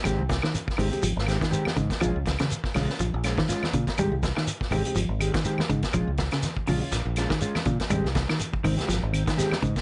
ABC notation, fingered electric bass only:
X:1
M:4/4
L:1/16
Q:"Swing 16ths" 1/4=122
K:Ab
V:1 name="Fingered electric bass" clef=bass
A,,, C,,2 z3 A,,, z A,,, A,,,2 z3 A,, z | B,,, D,,2 z3 B,,, z B,,, B,,,2 z3 B,, z | A,,, C,,2 z3 A,,, z A,,, A,,,2 z3 A,, z | B,,, D,,2 z3 B,,, z B,,, B,,,2 z3 B,, z |
A,,, C,,2 z3 A,,, z A,,, A,,,2 z3 A,, z |]